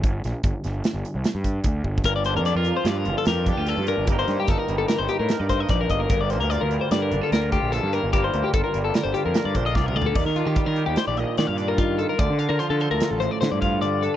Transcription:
<<
  \new Staff \with { instrumentName = "Clean electric guitar" } { \time 5/4 \key g \minor \tempo 4 = 148 r1 r4 | bes'16 d''16 c''16 bes'16 d''16 bes'8 c''16 d''16 bes'8 a'16 bes'8 g'8 a'8 bes'8 | g'16 c''8 g'16 a'16 bes'8 a'16 bes'16 c''16 g'16 bes'8 d''16 c''16 ees''16 d''16 bes'16 ees''16 bes'16 | bes'16 d''16 c''16 bes'16 d''16 bes'8 c''16 d''16 bes'8 a'16 bes'8 g'8 a'8 bes'8 |
g'16 c''8 g'16 a'16 bes'8 a'16 bes'16 c''16 g'16 bes'8 d''16 c''16 ees''16 d''16 bes'16 d''16 a'16 | d''16 bes'16 f'16 g'8 bes'8 g'16 c''16 d''16 ees''8 d''16 f''16 d''16 bes'16 f'8 a'16 bes'16 | d''8 f''16 bes'16 c''16 a'16 c''16 bes'8 a'16 c''16 d''16 c''16 d''16 f''8 d''8 a'8 | }
  \new Staff \with { instrumentName = "Clean electric guitar" } { \time 5/4 \key g \minor << { r1 r4 | r8 d'8 d'16 f'4~ f'16 f'8 g'8 d'16 f'8. d'8 | <g bes ees' bes'>8 bes8 ees'4. ees'8 bes'8 ees'4 bes8~ | bes8 bes8 f'4. d'16 f'16 bes'8 f'4 bes8 |
<g bes f' bes'>8 bes8 f'4. f'8 bes'8 d'16 f'4~ f'16 | r8 d'16 f'8. g'2 d'16 f'8. f'8 | r8 d'16 f'8. a'2 f'4 d'16 r16 | } \\ { r1 r4 | g,4. f8 g,2 g,4 | g,4. g8 g,2 g,4 | g,4. g8 d2 g,4 |
g,4. g8 d2 c8 d8 | ees4 g4. bes,4. ees4 | d4 f4. a,4. d4 | } >> }
  \new Staff \with { instrumentName = "Picked electric bass" } { \clef bass \time 5/4 \key g \minor g,,8 bes,,16 r16 g,,16 r16 g,,8 r16 g,,16 r16 c,16 r16 g,8. d,8 g,,8 | g,,8. f,8 f,8 r16 g,8 g,,16 r16 f,8. d,8 g,8 g,,16 | g,,8 g,16 r16 g,,16 r16 g,,8 r16 g,,16 r16 a,16 r16 g,8. bes,,8 g,,8 | g,,8. d,8 d,8 r16 g,8 g,,16 r16 d,8. bes,,8 g,8 g,,16 |
g,,8 d,16 r16 g,,16 r16 g,,8 r16 g,,16 r16 f,16 r16 g,16 bes,,8 c,8 d,8 | ees,16 ees8 ees16 r16 ees8 ees,16 r16 bes,,8 r16 ees16 g,4.~ g,16 | d,16 d8 d16 r16 d8 d,16 r16 a,,8 r16 d16 g,4.~ g,16 | }
  \new DrumStaff \with { instrumentName = "Drums" } \drummode { \time 5/4 <hh bd>8 <hh sn>8 <hh bd>8 <hh sn>8 <hh sn>8 hh8 <hh sn>8 <hh bd>8 \tuplet 3/2 { <hh bd>16 r16 r16 bd16 r16 bd16 } | <hh bd>8 hh8 <hh sn>8 hh8 <hh sn>8 hh8 <hh sn>8 <hh bd>8 hh8 hh8 | <hh bd>8 <hh sn>8 <hh bd sn>8 hh8 <hh sn>8 hh8 <hh sn>8 <hh bd sn>8 <hh bd sn>8 <hh bd>8 | <hh bd>8 <hh sn>8 hh8 hh8 <hh sn>8 hh8 <hh sn>8 <hh bd>8 <hh sn>8 hh8 |
<hh bd>8 hh8 <hh bd>8 hh8 <hh sn>8 hh8 <hh sn>8 <hh bd>8 \tuplet 3/2 { <bd sn>8 toml8 tomfh8 } | <cymc bd>8 hh8 <hh bd>8 hh8 <hh sn>8 hh8 <hh sn>8 hh8 <hh bd>8 hh8 | <hh bd>8 hh8 hh8 hh8 <hh sn>8 hh8 <hh sn>8 <hh bd>8 hh8 hh8 | }
>>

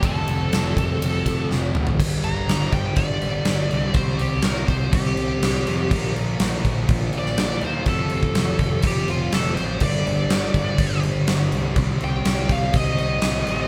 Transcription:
<<
  \new Staff \with { instrumentName = "Lead electric guitar" } { \time 4/4 \key g \minor \tempo 4 = 123 <a' a''>2. r4 | r8 bes''4 g''8 d''2 | c''8 g'8 bes'8 c''8 g'2~ | g'8 r2 d''4 c''8 |
a'2 g'8 f'8 a'8 c''8 | d''2~ d''8 r4. | r8 g''4 f''8 ees''2 | }
  \new Staff \with { instrumentName = "Distorted electric guitar" } { \clef bass \time 4/4 \key g \minor <f, c f>2.~ <f, c f>8 <f, c f>8 | <g, d g>2.~ <g, d g>8 <g, d g>8 | <c g c'>2.~ <c g c'>8 <c g c'>8 | <bes, f bes>2.~ <bes, f bes>8 <bes, f bes>8 |
<f, c f>2.~ <f, c f>8 <f, c f>8 | <g, d g>2.~ <g, d g>8 <g, d g>8 | <c g c'>2.~ <c g c'>8 <c g c'>8 | }
  \new Staff \with { instrumentName = "Distorted electric guitar" } { \clef bass \time 4/4 \key g \minor <f, c f>2 <f, c f>2 | <g, d g>2 <g, d g>2 | <c g c'>2 <c g c'>2 | <bes, f bes>2 <bes, f bes>2 |
<f, c f>2 <f, c f>2 | <g, d g>2 <g, d g>2 | <c g c'>2 <c g c'>2 | }
  \new Staff \with { instrumentName = "Fingered electric bass" } { \clef bass \time 4/4 \key g \minor f,,8 f,,8 f,,8 f,,8 f,,8 f,,8 f,,8 bes,,8 | g,,8 g,,8 g,,8 g,,8 g,,8 g,,8 g,,8 c,8 | c,8 c,8 c,8 c,8 c,8 c,8 c,8 f,8 | bes,,8 bes,,8 bes,,8 bes,,8 bes,,8 bes,,8 bes,,8 ees,8 |
f,,8 f,,8 f,,8 f,,8 f,,8 f,,8 f,,8 a,,8 | g,,8 g,,8 g,,8 g,,8 g,,8 g,,8 g,,8 c,8 | c,8 c,8 c,8 c,8 c,8 c,8 c,8 a,,8 | }
  \new DrumStaff \with { instrumentName = "Drums" } \drummode { \time 4/4 <bd cymr>8 cymr8 <cymr sn>8 <bd cymr>8 cymr8 <bd cymr sn>8 sn8 toml16 tomfh16 | <cymc bd>8 cymc8 <cymc sn>8 <cymc bd>8 <cymc bd>8 cymc8 <cymc sn>8 cymc8 | <cymc bd>8 cymc8 <cymc sn>8 <cymc bd>8 <cymc bd>8 cymc8 <cymc sn>8 cymc8 | <cymc bd>8 cymc8 <cymc sn>8 <cymc bd>8 <cymc bd>8 cymc16 sn16 <cymc sn>8 cymc8 |
<cymc bd>8 cymc16 bd16 <cymc sn>8 <cymc bd>8 <cymc bd>8 cymc8 <cymc sn>8 cymc8 | <cymc bd>8 cymc8 <cymc sn>8 <cymc bd>8 <cymc bd>8 cymc8 <cymc sn>8 cymc8 | <cymc bd>8 cymc8 <cymc sn>8 <cymc bd>8 <cymc bd>8 cymc8 <cymc sn>8 cymc8 | }
>>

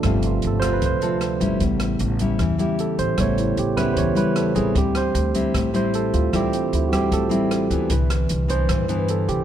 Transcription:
<<
  \new Staff \with { instrumentName = "Tine electric piano" } { \time 4/4 \key d \dorian \tempo 4 = 152 c'8 f'8 \tuplet 3/2 { a'8 c''8 b'8 } c''2 | r2 r8 g'8 a'8 c''8 | cis''8 e'8 g'8 b'8 <c'' cis''>8 b'8 a'8 aes'8 | g'8 c''8 r4. c''8 a'8 f'8 |
g'8 c'8 e'8 <fis' g'>8 a'4 r4 | r4. c''4. a'8 g'8 | }
  \new Staff \with { instrumentName = "Tine electric piano" } { \clef bass \time 4/4 \key d \dorian <c f a>4. r4 <c f a>8 r4 | <cis g b>1 | <cis g b>4. <cis g b>8 r2 | <e g c'>4. r2 r8 |
<e g c'>4. r4 <e g c'>8 r4 | <d e b'>1 | }
  \new Staff \with { instrumentName = "Nylon-string guitar" } { \time 4/4 \key d \dorian << { <c' f' a'>4. <c' f' a'>4 <c' f' a'>4 <g des' e'>8~ | <g des' e'>4. <g cis' e'>4 <g cis' e'>4. | <g cis' e'>4 r8 <g cis' e'>4 <g cis' e'>4 <g c' e'>8~ | <g c' e'>4. <g c' e'>4 <g c' e'>4. |
<g c' e'>4. <g c' e'>4 <g c' e'>4 <e b d'>8~ | <e b d'>4. <e b d'>4 <e b d'>4. | } \\ { g2 d2 | a,2 e2 | a,2 e2 | d2 a,2 |
d2 a,2 | c2 g,2 | } >> }
  \new Staff \with { instrumentName = "Upright bass" } { \clef bass \time 4/4 \key d \dorian g,,4 g,,4 d,4. g,,8 | a,,4 a,,4 e,4. a,,8 | a,,4 a,,4 e,4. a,,8 | d,4 d,4 a,,4. d,8 |
d,4 d,4 a,,4. d,8 | c,4 c,4 g,4. c,8 | }
  \new DrumStaff \with { instrumentName = "Drums" } \drummode { \time 4/4 <hh bd ss>8 hh8 hh8 <hh bd ss>8 <hh bd>8 hh8 <hh ss>8 <hh bd>8 | <hh bd>8 <hh ss>8 hh8 <hh bd>8 <hh bd ss>8 hh8 hh8 <hh bd>8 | <hh bd ss>8 hh8 hh8 <hh bd ss>8 <hh bd>8 hh8 <hh ss>8 <hh bd>8 | <hh bd>8 <hh ss>8 hh8 <hh bd>8 <hh bd ss>8 hh8 hh8 <hh bd>8 |
<hh bd ss>8 hh8 hh8 <hh bd ss>8 <hh bd>8 hh8 <hh ss>8 <hh bd>8 | <hh bd>8 <hh ss>8 hh8 <hh bd>8 <hh bd ss>8 hh8 hh8 <hh bd>8 | }
>>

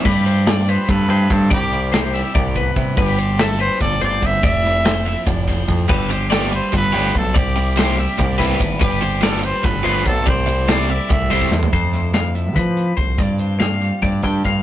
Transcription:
<<
  \new Staff \with { instrumentName = "Clean electric guitar" } { \time 7/8 \key g \mixolydian \tempo 4 = 144 b'8 c''8 d''8 b'8 a'8 c''4 | d''4 c''8 e''8 d''8 b'4 | b'8 c''8 e''8 b'8 a'8 c''4 | d''4 c''8 e''8 d''8 c''4 |
b'8 c''8 d''8 b'8 a'8 c''4 | d''4 c''8 e''8 d''8 b'4 | b'8 c''8 d''8 b'8 a'8 c''4 | d''4 c''8 e''8 d''8 c''4 |
c''4 f''8 e''8 b'4 c''8 | d''8 c''8 f''4 d''8 g''8 f''8 | }
  \new Staff \with { instrumentName = "Trumpet" } { \time 7/8 \key g \mixolydian g'4 d''8 c''8 b'4 a'8 | g'4 g'2 r8 | g'4 a'8 c''8 d''8 d''8 e''8 | e''2 r4. |
g'4 d''8 c''8 b'4 a'8 | g'4 g'2 r8 | g'4 a'8 c''8 b'8 b'8 a'8 | c''4 d''4 e''4 r8 |
r2. r8 | r2. r8 | }
  \new Staff \with { instrumentName = "Clean electric guitar" } { \time 7/8 \key g \mixolydian << { <a c'>8 c'8 f'8 c'8 f'8 a8 c'8~ | c'8 e'8 e'8 e'8 e'8 b8 e'8 | r8 c'8 f'8 c'2~ | c'8 e'8 a'8 e'2 |
r8 c'8 f'8 c'8 f'8 a8 c'8~ | c'8 e'8 e'8 e'8 e'8 b8 e'8 | r8 c'8 f'8 c'8 f'8 a8 c'8~ | c'8 e'8 a'8 e'8 a'8 a8 e'8 |
a'8 e'8 a'2~ a'8 | <g c' d' f'>8 d'8 f'4 c'16 d'8. f'8 | } \\ { <g, f>4. g4. d8 | c4. g4. g,8 | g,4. g8 b,8 a,8 g,8 | f,4. f4. f,8 |
g,4. g4. d8 | c4. g4. g,8 | g,4. g4. d8 | c4. g4. g,8 |
f,4. f4. f,8 | g,4. g4 d4 | } >> }
  \new Staff \with { instrumentName = "Overdriven electric guitar" } { \time 7/8 \key g \mixolydian r2. r8 | r2. r8 | r2. r8 | r2. r8 |
r4 <f b d' g'>8 r4 <f b d' g'>8 r8 | r4 <g c' e' g'>8 r4 <g c' e' g'>8 r8 | r4 <d f b f'>8 r4 <d f b f'>8 r8 | r4 <c g c' e'>8 r4 <c g c' e'>8 r8 |
r2. r8 | r2. r8 | }
  \new Staff \with { instrumentName = "Picked electric bass" } { \clef bass \time 7/8 \key g \mixolydian g,2 g,8 g,8 g,8 | c,2 c,4 c8 | g,,2 g,,8 g,,8 g,,8 | f,,2 f,,4 f,8 |
g,,2 g,,8 g,,8 b,,8 | c,2 c,4 aes,,8 | g,,2 g,,8 g,,8 b,,8 | c,2 c,4 e,8 |
f,2 f4 c,8 | g,2 g,8 g,8 g,8 | }
  \new DrumStaff \with { instrumentName = "Drums" } \drummode { \time 7/8 <cymc bd>8 cymr8 <cymr sn>8 cymr8 <bd cymr>8 cymr8 <bd cymr>8 | <bd cymr>8 cymr8 <cymr sn>8 <cymr sn>8 <bd cymr>8 <bd cymr>8 <bd cymr>8 | <bd cymr>8 cymr8 <cymr sn>8 cymr8 <bd cymr sn>8 <cymr sn>8 <bd cymr>8 | <bd cymr>8 <cymr sn>8 <cymr sn>8 <cymr sn>8 <bd cymr>8 <bd cymr sn>8 <bd cymr>8 |
<cymc bd>8 cymr8 <cymr sn>8 cymr8 <bd cymr>8 <cymr sn>8 <bd cymr>8 | <bd cymr>8 cymr8 <cymr sn>8 <cymr sn>8 <bd cymr sn>8 <bd cymr sn>8 <bd cymr>8 | <bd cymr>8 cymr8 <cymr sn>8 cymr8 <bd cymr sn>8 cymr8 <bd cymr sn>8 | <bd cymr>8 cymr8 <cymr sn>8 cymr8 <bd cymr>8 <bd cymr>16 bd16 sn16 tomfh16 |
<hh bd>8 <hh sn>8 <hh sn>8 hh8 <hh bd sn>8 hh8 <hh bd>8 | <hh bd>8 hh8 <hh sn>8 hh8 <hh bd>8 <hh bd>8 <hh bd>8 | }
>>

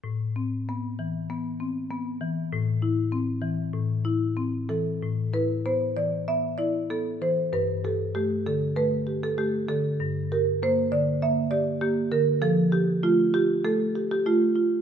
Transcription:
<<
  \new Staff \with { instrumentName = "Marimba" } { \time 4/4 \key a \minor \tempo 4 = 98 r1 | r2. r8 a'8~ | a'8 b'8 c''8 d''8 e''8 d''8 a'8 c''8 | b'8 a'8 g'8 a'8 b'8. a'16 g'8 a'8~ |
a'8 bes'8 c''8 d''8 e''8 d''8 g'8 bes'8 | a'8 g'8 f'8 g'8 a'8. g'16 f'8 r8 | }
  \new Staff \with { instrumentName = "Marimba" } { \time 4/4 \key a \minor a,8 c'8 b8 e8 b8 c'8 b8 e8 | a,8 e'8 c'8 e8 a,8 e'8 c'8 e8 | a,8 e'8 b8 e8 b8 e'8 b8 e8 | g,8 g'8 a8 d8 a8 g'8 a8 d8 |
g,8 g'8 bes8 d8 bes8 g'8 bes8 d8 | f4 a8 f'8 a8 g'8 a8 f'8 | }
>>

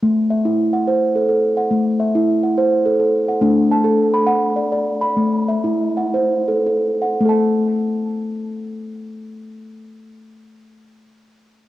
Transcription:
<<
  \new Staff \with { instrumentName = "Steel tongue drum" } { \time 3/4 \key a \dorian \tempo 4 = 97 << { r8 e''8. fis''8. a'8. fis''16~ | fis''8 e''8. fis''8. a'8. fis''16~ | fis''16 r16 a''8. b''8. d''8. b''16~ | b''16 r16 e''8. fis''8. a'8. fis''16~ |
fis''16 r2 r8. | r2. | } \\ { r8. e'8 r16 c''8 r16 a'8 r16 | a8 r16 e'8 r16 c''8 r16 a'8 r16 | d'8 r16 a'8 r16 fis''8 r16 d''8 r16 | a8 r16 e'8 r16 c''8 r16 a'8 r16 |
r2. | r2. | } >> }
  \new Staff \with { instrumentName = "Steel tongue drum" } { \time 3/4 \key a \dorian a2 r4 | r2. | a2 r4 | r2. |
<a a' a''>2.~ | <a a' a''>2. | }
>>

